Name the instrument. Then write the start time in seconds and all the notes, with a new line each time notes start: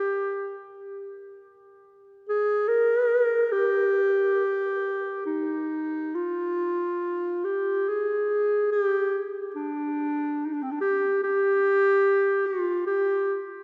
clarinet
Already playing: G4
2.29 G#4
2.68 A#4
3.52 G4
5.26 D#4
6.15 F4
7.44 G4
7.88 G#4
8.72 G4
9.55 D4
10.46 D#4
10.54 D4
10.63 C4
10.71 D4
10.81 G4
11.23 G4
12.46 F4
12.87 G4